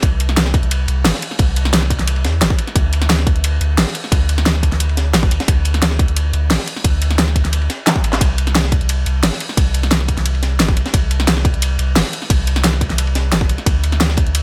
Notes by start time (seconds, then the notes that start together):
0.02 C2, kick, closed hi-hat, ride
0.20 closed hi-hat, ride
0.29 snare, closed hi-hat
0.37 snare, closed hi-hat, ride
0.46 snare
0.54 kick, closed hi-hat, ride
0.63 C2, closed hi-hat
0.71 closed hi-hat, ride
0.88 C2, closed hi-hat, ride
1.04 G1, snare, closed hi-hat, open hi-hat
1.14 snare
1.22 closed hi-hat, ride
1.31 snare
1.39 C2, kick, closed hi-hat, ride
1.56 closed hi-hat, ride
1.65 snare, closed hi-hat
1.73 snare, closed hi-hat, ride
1.82 snare
1.90 kick, closed hi-hat, ride
1.99 C2, snare, closed hi-hat
2.07 closed hi-hat, ride
2.16 ride
2.24 E2, snare, closed hi-hat, ride
2.41 G1, snare, closed hi-hat, ride
2.50 kick
2.58 closed hi-hat, ride
2.67 snare, closed hi-hat
2.76 D2, kick, closed hi-hat, ride
2.93 closed hi-hat, ride
3.02 snare, closed hi-hat
3.09 snare, closed hi-hat, ride
3.19 snare
3.27 kick, closed hi-hat, ride
3.35 D2, closed hi-hat
3.44 closed hi-hat, ride
3.61 D2, closed hi-hat, ride
3.78 A1, snare, closed hi-hat, open hi-hat
3.87 snare
3.95 closed hi-hat, ride
4.04 snare
4.12 D2, kick, closed hi-hat, ride
4.29 closed hi-hat, ride
4.38 snare, closed hi-hat
4.46 snare, closed hi-hat, ride
4.55 snare
4.63 kick, closed hi-hat, ride
4.72 D2, snare, closed hi-hat
4.80 closed hi-hat, ride
4.89 ride
4.97 snare, closed hi-hat, ride
5.13 A1, snare, closed hi-hat, ride
5.23 kick
5.31 D2, closed hi-hat, ride
5.40 snare, closed hi-hat
5.48 D2, kick, closed hi-hat, ride
5.65 closed hi-hat, ride
5.74 snare, closed hi-hat
5.82 snare, closed hi-hat, ride
5.91 snare
5.99 kick, closed hi-hat, ride
6.08 D2, closed hi-hat
6.16 closed hi-hat, ride
6.33 D2, closed hi-hat, ride
6.50 A1, snare, closed hi-hat, open hi-hat
6.59 snare
6.67 closed hi-hat, ride
6.76 snare
6.84 D2, kick, closed hi-hat, ride
7.02 closed hi-hat, ride
7.11 snare, closed hi-hat
7.18 snare, closed hi-hat, ride
7.28 snare
7.36 kick, closed hi-hat, ride
7.45 D2, snare, closed hi-hat
7.53 closed hi-hat, ride
7.62 ride
7.70 snare, closed hi-hat, ride
7.87 snare, clap, closed hi-hat, ride
7.96 kick
8.04 A1, closed hi-hat, ride
8.13 snare, clap, closed hi-hat, ride
8.21 C2, kick, closed hi-hat, ride, ride bell
8.38 closed hi-hat, ride
8.47 snare, closed hi-hat
8.55 snare, closed hi-hat, ride, ride bell
8.64 snare
8.72 kick, closed hi-hat, ride
8.81 C2, closed hi-hat
8.89 closed hi-hat, ride, ride bell
9.06 C2, closed hi-hat, ride
9.23 G1, snare, closed hi-hat, open hi-hat, ride bell
9.33 snare
9.40 closed hi-hat, ride
9.49 snare
9.57 C2, kick, closed hi-hat, ride, ride bell
9.74 closed hi-hat, ride
9.83 snare, closed hi-hat
9.91 snare, closed hi-hat, ride, ride bell
10.00 snare
10.08 kick, closed hi-hat, ride
10.17 C2, snare, closed hi-hat
10.25 closed hi-hat, ride, ride bell
10.35 ride
10.43 snare, closed hi-hat, ride
10.59 G1, snare, closed hi-hat, ride, ride bell
10.69 kick
10.77 C2, closed hi-hat, ride
10.86 snare, closed hi-hat
10.94 C2, kick, closed hi-hat, ride, ride bell
11.11 closed hi-hat, ride
11.20 snare, closed hi-hat
11.27 snare, closed hi-hat, ride, ride bell
11.37 snare
11.45 kick, closed hi-hat, ride
11.54 C2, closed hi-hat
11.62 closed hi-hat, ride, ride bell
11.79 C2, closed hi-hat, ride
11.96 G1, snare, closed hi-hat, open hi-hat, ride bell
12.04 snare
12.13 closed hi-hat, ride
12.22 snare
12.30 C2, kick, closed hi-hat, ride, ride bell
12.47 closed hi-hat, ride
12.56 snare, closed hi-hat
12.64 snare, closed hi-hat, ride, ride bell
12.73 snare
12.81 kick, closed hi-hat, ride
12.90 C2, snare, closed hi-hat
12.98 closed hi-hat, ride, ride bell
13.07 ride
13.15 snare, closed hi-hat, ride
13.32 G1, snare, closed hi-hat, ride, ride bell
13.41 kick
13.49 C2, closed hi-hat, ride
13.58 snare, closed hi-hat
13.66 D2, kick, closed hi-hat, ride, ride bell
13.84 closed hi-hat, ride
13.92 snare, closed hi-hat
14.00 snare, closed hi-hat, ride, ride bell
14.09 snare
14.17 kick, closed hi-hat, ride
14.26 D2, closed hi-hat
14.35 closed hi-hat, ride, ride bell